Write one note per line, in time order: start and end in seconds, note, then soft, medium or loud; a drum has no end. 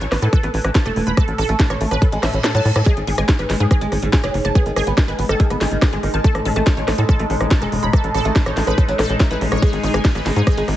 0.01 0.07 A1 medium
0.01 0.05 E3 medium
0.01 0.08 C#5 medium
0.01 closed hi-hat soft
0.12 0.18 A1 loud
0.12 0.16 B3 medium
0.12 cross-stick medium
0.12 snare medium
0.12 open hi-hat loud
0.22 0.28 A2 medium
0.22 0.27 E3 medium
0.22 0.25 A4 medium
0.22 closed hi-hat soft
0.33 0.37 E3 medium
0.33 0.37 A4 loud
0.33 kick loud
0.33 cross-stick soft
0.33 closed hi-hat loud
0.43 0.49 A1 medium
0.43 0.48 B3 loud
0.43 closed hi-hat soft
0.54 0.60 A1 loud
0.54 0.58 E3 medium
0.54 open hi-hat loud
0.64 0.71 A1 medium
0.64 0.69 E3 medium
0.64 cross-stick medium
0.64 closed hi-hat soft
0.75 0.79 E3 medium
0.75 0.82 A5 medium
0.75 kick loud
0.75 snare loud
0.75 closed hi-hat loud
0.86 0.92 E1 medium
0.86 0.90 A3 loud
0.86 0.88 A4 medium
0.86 cross-stick soft
0.86 closed hi-hat soft
0.96 1.02 E1 loud
0.96 1.01 E3 medium
0.96 open hi-hat loud
1.07 1.13 E1 medium
1.07 1.11 E3 medium
1.07 1.11 B5 medium
1.07 closed hi-hat soft
1.17 1.22 A3 loud
1.17 1.22 A4 loud
1.17 kick loud
1.17 cross-stick medium
1.17 closed hi-hat medium
1.28 1.34 A1 medium
1.28 1.32 A2 medium
1.28 closed hi-hat soft
1.38 1.45 A1 loud
1.38 1.43 A2 medium
1.38 1.43 A4 loud
1.38 cross-stick soft
1.38 open hi-hat loud
1.49 1.55 A1 medium
1.49 1.53 A3 loud
1.49 closed hi-hat soft
1.60 1.64 A2 medium
1.60 1.66 A5 medium
1.60 kick loud
1.60 snare loud
1.60 closed hi-hat loud
1.70 1.76 A1 medium
1.70 1.74 A2 medium
1.70 1.77 C#5 medium
1.70 cross-stick medium
1.70 closed hi-hat soft
1.81 1.87 A1 loud
1.81 1.85 A3 medium
1.81 open hi-hat loud
1.91 1.97 A1 medium
1.91 1.96 A2 medium
1.91 1.96 B4 loud
1.91 cross-stick soft
1.91 closed hi-hat soft
2.02 2.06 A2 medium
2.02 2.06 A4 medium
2.02 kick loud
2.02 closed hi-hat loud
2.02 reverse cymbal medium
2.12 2.18 A1 medium
2.12 2.17 G#3 loud
2.12 closed hi-hat soft
2.23 2.29 A1 loud
2.23 2.27 A2 medium
2.23 2.28 E5 medium
2.23 cross-stick medium
2.23 snare medium
2.23 open hi-hat loud
2.33 2.40 A1 medium
2.33 2.38 A2 medium
2.33 closed hi-hat soft
2.44 2.48 A2 medium
2.44 2.47 A4 loud
2.44 cross-stick soft
2.44 snare loud
2.44 closed hi-hat loud
2.55 2.61 A2 medium
2.55 2.59 F#3 loud
2.55 2.59 A5 loud
2.55 closed hi-hat soft
2.65 2.70 A2 medium
2.65 2.71 A2 loud
2.65 open hi-hat loud
2.76 2.82 A2 medium
2.76 2.80 A2 medium
2.76 2.80 A4 medium
2.76 cross-stick medium
2.76 closed hi-hat soft
2.86 10.77 G#3 medium
2.86 2.91 G#3 loud
2.86 10.77 D#4 medium
2.86 2.91 G#4 loud
2.86 kick loud
2.86 cross-stick soft
2.86 closed hi-hat loud
2.97 3.03 G#1 medium
2.97 3.01 G#2 medium
2.97 closed hi-hat soft
3.07 3.13 G#1 medium
3.07 3.12 G#2 medium
3.07 3.12 G#4 medium
3.07 open hi-hat loud
3.18 3.24 G#1 loud
3.18 3.22 G#3 medium
3.18 3.23 G#5 medium
3.18 cross-stick medium
3.18 closed hi-hat soft
3.29 3.33 G#2 medium
3.29 3.35 G#5 medium
3.29 kick loud
3.29 snare loud
3.29 closed hi-hat loud
3.39 3.45 G#1 medium
3.39 3.43 G#2 medium
3.39 3.46 B4 medium
3.39 cross-stick soft
3.39 closed hi-hat soft
3.50 3.56 G#1 loud
3.50 3.54 G#3 medium
3.50 snare medium
3.50 open hi-hat loud
3.60 3.66 G#2 medium
3.60 3.65 G#2 medium
3.60 3.63 G#4 medium
3.60 closed hi-hat soft
3.71 3.75 G#2 medium
3.71 3.75 G#4 loud
3.71 kick loud
3.71 cross-stick medium
3.71 closed hi-hat medium
3.81 3.87 G#1 medium
3.81 3.86 G#3 loud
3.81 closed hi-hat soft
3.92 3.98 G#1 loud
3.92 3.96 G#2 medium
3.92 cross-stick soft
3.92 open hi-hat loud
4.02 4.09 G#1 medium
4.02 4.07 G#2 medium
4.02 closed hi-hat soft
4.13 4.17 G#2 medium
4.13 4.20 G#5 medium
4.13 kick loud
4.13 snare loud
4.13 closed hi-hat loud
4.24 4.30 F#1 medium
4.24 4.28 F#3 loud
4.24 4.26 G#4 medium
4.24 cross-stick medium
4.24 closed hi-hat soft
4.34 4.40 F#1 loud
4.34 4.39 G#2 medium
4.34 open hi-hat loud
4.45 4.51 F#1 medium
4.45 4.49 G#2 medium
4.45 4.49 A5 medium
4.45 cross-stick soft
4.45 closed hi-hat soft
4.55 4.60 B3 loud
4.55 4.60 G#4 loud
4.55 kick loud
4.55 closed hi-hat medium
4.66 4.72 G#1 medium
4.66 4.70 D#3 medium
4.66 closed hi-hat soft
4.76 4.83 G#1 loud
4.76 4.81 D#3 medium
4.76 4.81 G#4 loud
4.76 cross-stick medium
4.76 open hi-hat loud
4.87 4.93 G#1 loud
4.87 4.91 B3 loud
4.87 closed hi-hat soft
4.98 5.02 D#3 medium
4.98 5.04 G#5 medium
4.98 kick loud
4.98 cross-stick soft
4.98 snare loud
4.98 closed hi-hat medium
5.08 5.14 G#1 medium
5.08 5.12 D#3 medium
5.08 5.15 B4 medium
5.08 closed hi-hat soft
5.19 5.25 G#1 loud
5.19 5.23 B3 medium
5.19 open hi-hat loud
5.29 5.35 G#1 medium
5.29 5.34 D#3 medium
5.29 5.34 A4 loud
5.29 cross-stick medium
5.29 closed hi-hat soft
5.40 5.44 D#3 medium
5.40 5.44 G#4 medium
5.40 kick loud
5.40 closed hi-hat loud
5.50 5.56 G#1 medium
5.50 5.55 B3 loud
5.50 cross-stick soft
5.50 closed hi-hat soft
5.61 5.67 G#1 loud
5.61 5.65 D#3 medium
5.61 5.66 G#4 medium
5.61 snare medium
5.61 open hi-hat loud
5.72 5.78 G#1 medium
5.72 5.76 D#3 medium
5.72 closed hi-hat soft
5.82 5.86 D#3 medium
5.82 5.85 G#4 medium
5.82 kick loud
5.82 cross-stick medium
5.82 snare loud
5.82 closed hi-hat medium
5.93 5.99 G#1 medium
5.93 5.97 G#3 loud
5.93 5.97 G#4 medium
5.93 closed hi-hat soft
6.03 6.09 G#1 loud
6.03 6.08 D#3 medium
6.03 cross-stick soft
6.03 open hi-hat loud
6.14 6.20 A1 medium
6.14 6.18 D#3 medium
6.14 6.18 A5 medium
6.14 closed hi-hat soft
6.24 6.29 A3 loud
6.24 6.29 A4 loud
6.24 kick loud
6.24 closed hi-hat medium
6.35 6.41 A1 medium
6.35 6.39 A2 medium
6.35 cross-stick medium
6.35 closed hi-hat soft
6.45 6.52 A1 loud
6.45 6.50 A2 medium
6.45 6.50 A4 medium
6.45 open hi-hat loud
6.56 6.62 A1 loud
6.56 6.60 A3 loud
6.56 6.61 A5 medium
6.56 cross-stick soft
6.56 closed hi-hat soft
6.67 6.71 A2 medium
6.67 6.73 A5 medium
6.67 kick loud
6.67 snare loud
6.67 closed hi-hat medium
6.77 6.83 A1 medium
6.77 6.82 A2 medium
6.77 6.84 C#5 medium
6.77 closed hi-hat soft
6.88 6.94 A1 loud
6.88 6.92 A3 loud
6.88 cross-stick medium
6.88 snare medium
6.88 open hi-hat loud
6.98 7.03 A2 medium
6.98 7.04 A2 loud
6.98 7.01 A4 medium
6.98 closed hi-hat soft
7.09 7.13 A2 medium
7.09 7.13 A4 loud
7.09 kick loud
7.09 cross-stick soft
7.09 closed hi-hat medium
7.19 7.25 A1 medium
7.19 7.24 A3 loud
7.19 closed hi-hat soft
7.30 7.36 A1 loud
7.30 7.34 A2 medium
7.30 open hi-hat loud
7.41 7.47 A1 medium
7.41 7.45 A2 medium
7.41 cross-stick medium
7.41 closed hi-hat soft
7.51 7.58 A5 medium
7.51 kick loud
7.51 snare loud
7.51 closed hi-hat medium
7.62 7.68 E1 medium
7.62 7.66 G#3 loud
7.62 7.64 A4 medium
7.62 cross-stick soft
7.62 closed hi-hat soft
7.72 7.78 E1 loud
7.72 7.77 A2 medium
7.72 open hi-hat loud
7.83 7.89 E1 medium
7.83 7.87 A2 medium
7.83 7.87 B5 medium
7.93 7.98 A3 loud
7.93 7.98 A4 loud
7.93 kick loud
7.93 cross-stick medium
7.93 closed hi-hat medium
8.04 8.10 A1 medium
8.04 8.08 A2 medium
8.04 closed hi-hat soft
8.14 8.21 A1 loud
8.14 8.19 A2 medium
8.14 8.19 A4 loud
8.14 cross-stick soft
8.14 open hi-hat loud
8.25 8.31 A1 loud
8.25 8.29 A3 loud
8.25 closed hi-hat soft
8.36 8.40 A2 medium
8.36 8.42 A5 medium
8.36 kick loud
8.36 snare loud
8.36 closed hi-hat medium
8.46 8.52 A1 medium
8.46 8.51 A2 medium
8.46 8.53 C#5 medium
8.46 cross-stick medium
8.46 closed hi-hat soft
8.57 8.63 A1 loud
8.57 8.61 A3 loud
8.57 snare medium
8.57 open hi-hat loud
8.67 8.73 A1 loud
8.67 8.72 A2 medium
8.67 8.72 B4 loud
8.67 cross-stick soft
8.67 closed hi-hat soft
8.78 8.82 A2 medium
8.78 8.82 A4 medium
8.78 kick loud
8.78 closed hi-hat medium
8.88 8.94 A1 medium
8.88 8.93 F#3 medium
8.88 closed hi-hat soft
8.99 9.05 A1 loud
8.99 9.03 A2 medium
8.99 9.04 A4 loud
8.99 cross-stick medium
8.99 snare medium
8.99 open hi-hat loud
9.10 9.16 A1 medium
9.10 9.14 A2 medium
9.10 closed hi-hat soft
9.20 9.24 A2 medium
9.20 9.23 E5 medium
9.20 kick loud
9.20 cross-stick soft
9.20 snare loud
9.20 closed hi-hat medium
9.31 9.37 A1 medium
9.31 9.35 E3 loud
9.31 9.35 B4 medium
9.31 closed hi-hat soft
9.41 9.47 A1 loud
9.41 9.46 A2 medium
9.41 open hi-hat loud
9.52 9.58 A1 medium
9.52 9.56 A2 medium
9.52 9.55 C#5 loud
9.52 cross-stick medium
9.52 closed hi-hat soft
9.62 9.67 G#3 loud
9.62 9.67 G#4 loud
9.62 kick loud
9.62 cross-stick soft
9.62 closed hi-hat medium
9.62 ride medium
9.73 9.79 G#1 medium
9.73 9.77 G#2 medium
9.73 closed hi-hat soft
9.83 9.90 G#1 loud
9.83 9.88 G#2 medium
9.83 9.88 G#4 medium
9.83 open hi-hat loud
9.94 10.00 G#1 loud
9.94 9.98 G#3 loud
9.94 9.99 G#5 medium
9.94 cross-stick medium
10.05 10.12 G#5 medium
10.05 kick loud
10.05 snare loud
10.05 closed hi-hat medium
10.05 ride medium
10.15 10.21 G#1 medium
10.15 10.20 G#2 medium
10.15 10.22 B4 medium
10.15 cross-stick soft
10.15 closed hi-hat soft
10.26 10.32 G#1 loud
10.26 10.30 G#3 medium
10.26 snare medium
10.26 open hi-hat loud
10.36 10.42 G#2 medium
10.36 10.41 G#2 medium
10.36 10.39 G#4 medium
10.36 closed hi-hat soft
10.47 10.51 G#2 medium
10.47 10.51 G#4 loud
10.47 kick loud
10.47 cross-stick medium
10.47 closed hi-hat medium
10.47 ride medium
10.57 10.63 G#1 medium
10.57 10.62 G#3 loud
10.57 closed hi-hat soft
10.68 10.74 G#1 loud
10.68 10.72 G#2 medium
10.68 cross-stick soft
10.68 open hi-hat loud